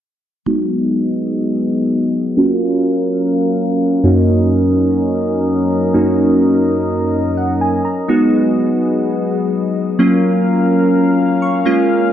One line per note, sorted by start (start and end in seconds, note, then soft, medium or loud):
0.46 11.62 F#3 medium
0.46 2.33 G#3 medium
0.46 2.33 B3 medium
0.46 2.35 B3 medium
0.46 2.34 D#4 medium
0.46 2.34 F#4 medium
0.46 2.35 G#4 medium
0.46 2.35 D#5 medium
2.37 4.00 A#3 medium
2.37 8.05 C#4 medium
2.37 4.01 C#4 medium
2.37 4.01 F4 medium
2.37 4.01 F#4 medium
2.37 4.02 A#4 medium
2.37 4.02 F5 medium
4.04 5.91 F#2 medium
4.04 5.91 A#3 medium
4.04 5.91 C#4 medium
4.04 5.91 D#4 medium
4.04 5.91 F#4 medium
4.04 8.05 A#4 medium
4.04 9.95 D#5 medium
5.94 7.81 F#2 medium
5.94 7.81 A#3 medium
5.94 7.81 C#4 medium
5.94 7.81 D#4 medium
5.94 7.81 F#4 medium
7.37 7.59 F#5 medium
7.61 7.83 G#5 medium
7.85 8.07 A#5 medium
8.08 9.95 G#3 medium
8.08 9.95 B3 medium
8.08 9.97 B3 medium
8.08 9.96 D#4 medium
8.08 9.96 F#4 medium
8.08 9.97 G#4 medium
9.99 11.62 F#3 medium
9.99 11.63 A#3 medium
9.99 12.13 C#4 medium
9.99 11.63 C#4 medium
9.99 11.63 F4 medium
9.99 11.64 A#4 medium
9.99 12.13 F5 medium
11.42 11.86 C#6 medium
11.65 12.13 G#3 medium
11.65 12.13 A#3 medium
11.65 12.13 C#4 medium
11.65 12.13 F4 medium
11.65 12.13 A#4 medium